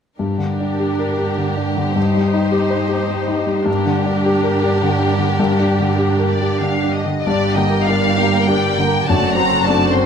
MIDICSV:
0, 0, Header, 1, 7, 480
1, 0, Start_track
1, 0, Key_signature, -2, "minor"
1, 0, Tempo, 588813
1, 166, Time_signature, 3, 2, 24, 8
1, 1602, Tempo, 573614
1, 4962, Tempo, 639659
1, 5922, Tempo, 609137
1, 6882, Tempo, 581395
1, 8187, End_track
2, 0, Start_track
2, 0, Title_t, "Violin section"
2, 0, Program_c, 0, 48
2, 159, Note_on_c, 0, 70, 27
2, 1564, Note_off_c, 0, 70, 0
2, 1596, Note_on_c, 0, 72, 37
2, 3026, Note_on_c, 0, 70, 42
2, 3030, Note_off_c, 0, 72, 0
2, 5191, Note_off_c, 0, 70, 0
2, 5197, Note_on_c, 0, 74, 51
2, 5417, Note_off_c, 0, 74, 0
2, 5428, Note_on_c, 0, 77, 48
2, 5674, Note_on_c, 0, 75, 40
2, 5677, Note_off_c, 0, 77, 0
2, 5918, Note_off_c, 0, 75, 0
2, 5923, Note_on_c, 0, 74, 51
2, 6150, Note_on_c, 0, 75, 49
2, 6161, Note_off_c, 0, 74, 0
2, 6381, Note_on_c, 0, 77, 58
2, 6395, Note_off_c, 0, 75, 0
2, 6864, Note_on_c, 0, 79, 51
2, 6870, Note_off_c, 0, 77, 0
2, 7365, Note_off_c, 0, 79, 0
2, 7368, Note_on_c, 0, 81, 55
2, 7597, Note_on_c, 0, 82, 62
2, 7610, Note_off_c, 0, 81, 0
2, 7835, Note_off_c, 0, 82, 0
2, 7838, Note_on_c, 0, 81, 58
2, 8071, Note_on_c, 0, 72, 56
2, 8077, Note_off_c, 0, 81, 0
2, 8187, Note_off_c, 0, 72, 0
2, 8187, End_track
3, 0, Start_track
3, 0, Title_t, "Violin section"
3, 0, Program_c, 1, 48
3, 176, Note_on_c, 1, 67, 31
3, 3004, Note_off_c, 1, 67, 0
3, 3031, Note_on_c, 1, 67, 52
3, 5733, Note_off_c, 1, 67, 0
3, 5934, Note_on_c, 1, 67, 38
3, 5937, Note_on_c, 1, 74, 39
3, 6151, Note_off_c, 1, 67, 0
3, 6152, Note_off_c, 1, 74, 0
3, 6154, Note_on_c, 1, 79, 34
3, 6155, Note_on_c, 1, 70, 33
3, 6397, Note_off_c, 1, 70, 0
3, 6397, Note_off_c, 1, 79, 0
3, 6402, Note_on_c, 1, 74, 36
3, 6404, Note_on_c, 1, 67, 36
3, 6641, Note_off_c, 1, 74, 0
3, 6642, Note_off_c, 1, 67, 0
3, 6644, Note_on_c, 1, 79, 35
3, 6648, Note_on_c, 1, 70, 31
3, 6881, Note_off_c, 1, 79, 0
3, 6883, Note_off_c, 1, 70, 0
3, 6897, Note_on_c, 1, 74, 34
3, 6902, Note_on_c, 1, 67, 31
3, 7120, Note_off_c, 1, 74, 0
3, 7123, Note_off_c, 1, 67, 0
3, 7133, Note_on_c, 1, 79, 33
3, 7136, Note_on_c, 1, 70, 34
3, 7375, Note_off_c, 1, 79, 0
3, 7377, Note_off_c, 1, 70, 0
3, 7385, Note_on_c, 1, 66, 39
3, 7388, Note_on_c, 1, 74, 44
3, 7602, Note_off_c, 1, 66, 0
3, 7604, Note_off_c, 1, 74, 0
3, 7612, Note_on_c, 1, 69, 35
3, 7617, Note_on_c, 1, 72, 37
3, 7846, Note_on_c, 1, 74, 36
3, 7847, Note_off_c, 1, 69, 0
3, 7850, Note_off_c, 1, 72, 0
3, 7850, Note_on_c, 1, 66, 39
3, 8081, Note_off_c, 1, 74, 0
3, 8083, Note_off_c, 1, 66, 0
3, 8087, Note_on_c, 1, 69, 34
3, 8087, Note_on_c, 1, 72, 38
3, 8187, Note_off_c, 1, 69, 0
3, 8187, Note_off_c, 1, 72, 0
3, 8187, End_track
4, 0, Start_track
4, 0, Title_t, "Grand piano"
4, 0, Program_c, 2, 0
4, 157, Note_on_c, 2, 43, 35
4, 312, Control_c, 2, 64, 127
4, 312, Note_on_c, 2, 50, 26
4, 488, Note_on_c, 2, 62, 26
4, 579, Note_off_c, 2, 50, 0
4, 648, Note_on_c, 2, 67, 25
4, 746, Note_off_c, 2, 62, 0
4, 806, Note_on_c, 2, 70, 29
4, 905, Note_off_c, 2, 67, 0
4, 964, Note_on_c, 2, 67, 26
4, 1061, Note_off_c, 2, 70, 0
4, 1123, Note_on_c, 2, 50, 26
4, 1218, Note_off_c, 2, 67, 0
4, 1279, Note_on_c, 2, 62, 29
4, 1377, Note_off_c, 2, 50, 0
4, 1443, Note_on_c, 2, 50, 33
4, 1535, Note_off_c, 2, 62, 0
4, 1564, Note_off_c, 2, 43, 0
4, 1594, Note_on_c, 2, 43, 37
4, 1601, Note_off_c, 2, 50, 0
4, 1616, Control_c, 2, 64, 0
4, 1754, Note_on_c, 2, 55, 32
4, 1771, Control_c, 2, 64, 127
4, 1910, Note_on_c, 2, 63, 34
4, 2013, Note_off_c, 2, 55, 0
4, 2062, Note_on_c, 2, 67, 32
4, 2167, Note_off_c, 2, 63, 0
4, 2223, Note_on_c, 2, 72, 37
4, 2322, Note_off_c, 2, 67, 0
4, 2373, Note_on_c, 2, 67, 36
4, 2482, Note_off_c, 2, 72, 0
4, 2638, Note_off_c, 2, 67, 0
4, 2700, Note_on_c, 2, 63, 36
4, 2856, Note_on_c, 2, 55, 34
4, 2962, Note_off_c, 2, 63, 0
4, 2995, Note_off_c, 2, 43, 0
4, 3018, Note_on_c, 2, 43, 48
4, 3024, Note_off_c, 2, 55, 0
4, 3046, Control_c, 2, 64, 0
4, 3171, Control_c, 2, 64, 127
4, 3187, Note_on_c, 2, 50, 38
4, 3352, Note_on_c, 2, 62, 41
4, 3444, Note_off_c, 2, 50, 0
4, 3520, Note_on_c, 2, 67, 35
4, 3607, Note_off_c, 2, 62, 0
4, 3667, Note_on_c, 2, 70, 40
4, 3770, Note_off_c, 2, 67, 0
4, 3823, Note_on_c, 2, 67, 38
4, 3922, Note_off_c, 2, 70, 0
4, 3997, Note_on_c, 2, 50, 37
4, 4079, Note_off_c, 2, 67, 0
4, 4132, Note_on_c, 2, 62, 38
4, 4246, Note_off_c, 2, 50, 0
4, 4297, Note_on_c, 2, 50, 42
4, 4396, Note_off_c, 2, 62, 0
4, 4426, Note_off_c, 2, 43, 0
4, 4471, Note_on_c, 2, 43, 51
4, 4481, Control_c, 2, 64, 0
4, 4560, Note_off_c, 2, 50, 0
4, 4604, Control_c, 2, 64, 127
4, 4636, Note_on_c, 2, 62, 39
4, 4813, Note_on_c, 2, 50, 36
4, 4896, Note_off_c, 2, 62, 0
4, 4966, Note_on_c, 2, 67, 32
4, 5062, Note_off_c, 2, 50, 0
4, 5116, Note_on_c, 2, 70, 36
4, 5212, Note_off_c, 2, 67, 0
4, 5284, Note_on_c, 2, 67, 32
4, 5368, Note_off_c, 2, 70, 0
4, 5431, Note_on_c, 2, 50, 28
4, 5534, Note_off_c, 2, 67, 0
4, 5603, Note_on_c, 2, 62, 27
4, 5695, Note_off_c, 2, 50, 0
4, 5769, Note_on_c, 2, 50, 26
4, 5862, Note_off_c, 2, 62, 0
4, 5891, Note_off_c, 2, 43, 0
4, 5924, Note_off_c, 2, 50, 0
4, 5929, Note_on_c, 2, 43, 49
4, 5934, Control_c, 2, 64, 0
4, 6080, Control_c, 2, 64, 127
4, 6156, Note_on_c, 2, 50, 35
4, 6402, Note_on_c, 2, 62, 31
4, 6408, Note_on_c, 2, 67, 32
4, 6409, Note_on_c, 2, 70, 31
4, 6542, Note_off_c, 2, 50, 0
4, 6617, Note_off_c, 2, 62, 0
4, 6620, Note_off_c, 2, 67, 0
4, 6621, Note_off_c, 2, 70, 0
4, 6639, Note_on_c, 2, 62, 31
4, 6870, Note_off_c, 2, 62, 0
4, 6882, Note_on_c, 2, 62, 35
4, 6882, Note_on_c, 2, 70, 33
4, 6883, Note_on_c, 2, 67, 32
4, 7105, Note_off_c, 2, 62, 0
4, 7105, Note_off_c, 2, 67, 0
4, 7105, Note_off_c, 2, 70, 0
4, 7134, Note_on_c, 2, 50, 38
4, 7345, Note_off_c, 2, 43, 0
4, 7376, Note_off_c, 2, 50, 0
4, 7388, Control_c, 2, 64, 0
4, 7391, Note_on_c, 2, 42, 47
4, 7519, Control_c, 2, 64, 127
4, 7622, Note_on_c, 2, 54, 37
4, 7871, Note_on_c, 2, 60, 28
4, 7872, Note_on_c, 2, 62, 35
4, 7876, Note_on_c, 2, 69, 33
4, 7993, Note_off_c, 2, 54, 0
4, 8071, Note_off_c, 2, 60, 0
4, 8072, Note_off_c, 2, 62, 0
4, 8074, Note_off_c, 2, 69, 0
4, 8098, Note_on_c, 2, 60, 34
4, 8187, Note_off_c, 2, 42, 0
4, 8187, Note_off_c, 2, 60, 0
4, 8187, End_track
5, 0, Start_track
5, 0, Title_t, "Viola section"
5, 0, Program_c, 3, 48
5, 159, Note_on_c, 3, 62, 31
5, 1564, Note_off_c, 3, 62, 0
5, 1603, Note_on_c, 3, 63, 37
5, 3005, Note_off_c, 3, 63, 0
5, 3033, Note_on_c, 3, 62, 44
5, 5733, Note_off_c, 3, 62, 0
5, 5920, Note_on_c, 3, 62, 37
5, 5925, Note_on_c, 3, 55, 38
5, 6143, Note_off_c, 3, 62, 0
5, 6146, Note_off_c, 3, 55, 0
5, 6157, Note_on_c, 3, 67, 35
5, 6164, Note_on_c, 3, 58, 34
5, 6398, Note_off_c, 3, 67, 0
5, 6401, Note_off_c, 3, 58, 0
5, 6414, Note_on_c, 3, 55, 33
5, 6415, Note_on_c, 3, 62, 33
5, 6647, Note_off_c, 3, 55, 0
5, 6647, Note_off_c, 3, 62, 0
5, 6647, Note_on_c, 3, 58, 37
5, 6648, Note_on_c, 3, 67, 31
5, 6883, Note_off_c, 3, 58, 0
5, 6884, Note_off_c, 3, 67, 0
5, 6884, Note_on_c, 3, 55, 32
5, 6884, Note_on_c, 3, 62, 34
5, 7113, Note_off_c, 3, 55, 0
5, 7113, Note_off_c, 3, 62, 0
5, 7138, Note_on_c, 3, 58, 32
5, 7142, Note_on_c, 3, 67, 36
5, 7378, Note_off_c, 3, 58, 0
5, 7378, Note_on_c, 3, 62, 38
5, 7380, Note_off_c, 3, 67, 0
5, 7382, Note_on_c, 3, 57, 36
5, 7599, Note_off_c, 3, 62, 0
5, 7601, Note_off_c, 3, 57, 0
5, 7616, Note_on_c, 3, 66, 40
5, 7620, Note_on_c, 3, 60, 38
5, 7849, Note_off_c, 3, 66, 0
5, 7852, Note_off_c, 3, 60, 0
5, 7854, Note_on_c, 3, 62, 36
5, 7857, Note_on_c, 3, 57, 34
5, 8078, Note_on_c, 3, 66, 34
5, 8082, Note_on_c, 3, 60, 37
5, 8085, Note_off_c, 3, 62, 0
5, 8087, Note_off_c, 3, 57, 0
5, 8187, Note_off_c, 3, 60, 0
5, 8187, Note_off_c, 3, 66, 0
5, 8187, End_track
6, 0, Start_track
6, 0, Title_t, "Cello section"
6, 0, Program_c, 4, 48
6, 164, Note_on_c, 4, 43, 30
6, 2998, Note_off_c, 4, 43, 0
6, 3028, Note_on_c, 4, 43, 40
6, 5731, Note_off_c, 4, 43, 0
6, 5922, Note_on_c, 4, 43, 41
6, 7341, Note_off_c, 4, 43, 0
6, 7378, Note_on_c, 4, 42, 43
6, 8187, Note_off_c, 4, 42, 0
6, 8187, End_track
7, 0, Start_track
7, 0, Title_t, "Double bass section"
7, 0, Program_c, 5, 48
7, 5919, Note_on_c, 5, 31, 43
7, 7340, Note_off_c, 5, 31, 0
7, 7372, Note_on_c, 5, 30, 45
7, 8187, Note_off_c, 5, 30, 0
7, 8187, End_track
0, 0, End_of_file